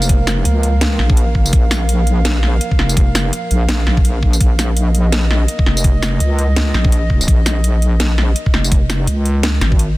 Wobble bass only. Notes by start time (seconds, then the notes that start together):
Already playing: F1
0.46 C#2
0.99 A#1
1.53 A#1
2.79 F1
3.51 A#1
3.87 A#1
4.41 A#1
5.67 F1
6.21 C#2
6.74 A#1
7.28 A#1
8.54 F1
9.07 C#2
9.61 G#1